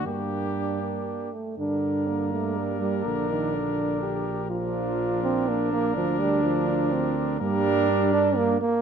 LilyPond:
<<
  \new Staff \with { instrumentName = "Trumpet" } { \time 3/4 \key g \minor \tempo 4 = 124 g'2~ g'8 r8 | bes'2.~ | bes'2. | bes'2.~ |
bes'2. | bes'2~ bes'8 r8 | }
  \new Staff \with { instrumentName = "Flugelhorn" } { \time 3/4 \key g \minor d'2~ d'8 r8 | d'2.~ | d'2. | d'2.~ |
d'2. | d'2~ d'8 r8 | }
  \new Staff \with { instrumentName = "French horn" } { \time 3/4 \key g \minor bes2~ bes8 r8 | d'4 bes2~ | bes4 d'4 g'4 | f'2 d'4 |
d'2 c'4 | bes4 d'4. r8 | }
  \new Staff \with { instrumentName = "Trombone" } { \clef bass \time 3/4 \key g \minor bes4 d'8 bes4 a8 | d4. a8 g8 g8 | d8 ees8 d4. r8 | f4. c'8 bes8 bes8 |
f8 g8 f4. r8 | g4. d'8 bes8 bes8 | }
  \new Staff \with { instrumentName = "Tuba" } { \clef bass \time 3/4 \key g \minor g,2~ g,8 r8 | g,2. | bes,,2.~ | bes,,2. |
d,2. | g,2~ g,8 r8 | }
>>